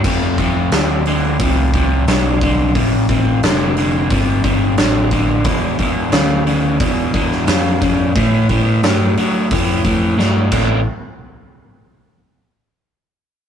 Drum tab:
CC |x---------------|----------------|----------------|--------------x-|
HH |o-o-o-o-o-o-o-o-|o-o-o-o-o-o-o-o-|o-o-o-o-o-o-o-o-|o-o-o-o-o-o-----|
SD |----o-------o---|----o-------o---|----o------oo---|----o-------o---|
BD |o-o-----o-o---o-|o-o-----o-o---o-|o-o-----o-o---o-|o-o-----o-o---o-|

CC |----------------|
HH |----------------|
SD |----------------|
BD |----------------|